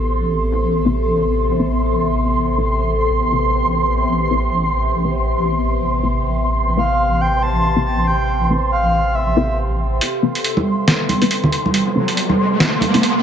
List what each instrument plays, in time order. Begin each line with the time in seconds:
Already playing: wobble bass A1, synth drone C3 B3 A4, synth texture C6
0.85 synth stab C4 E4 A4 B4
1.59 synth stab C4 E4 A4 B4
2.58 synth stab C4 E4 A4 B4
3.10 wobble bass A1, synth drone G4
3.32 synth stab C4 E4 A4 B4
4.31 synth stab C4 E4 A4 B4
5.04 synth stab C4 E4 A4 B4
6.03 synth stab C4 E4 A4 B4
6.77 synth stab C4 E4 A4 B4, soft synth lead F5
7.21 soft synth lead G5
7.43 soft synth lead A5
7.76 synth stab C4 E4 A4 B4
7.86 soft synth lead A5
8.07 soft synth lead G5
8.50 synth stab C4 E4 A4 B4
8.72 soft synth lead F5
9.15 soft synth lead E5
9.36 synth stab C4 E4 A4 B4
10.01 synth drone C3 B3 A4, synth texture C6, closed hi-hat, riser
10.23 synth stab C4 E4 A4 B4
10.35 closed hi-hat
10.44 closed hi-hat
10.57 high conga
10.88 snare, closed hi-hat
11.09 closed hi-hat, high conga
11.21 synth stab C4 E4 A4 B4, closed hi-hat
11.31 closed hi-hat
11.44 low conga
11.52 closed hi-hat
11.66 high conga
11.74 closed hi-hat
11.95 synth stab C4 E4 A4 B4
12.08 closed hi-hat
12.17 closed hi-hat
12.29 high conga
12.60 snare, closed hi-hat
12.81 closed hi-hat, high conga
12.94 synth stab C4 E4 A4 B4, closed hi-hat
13.03 closed hi-hat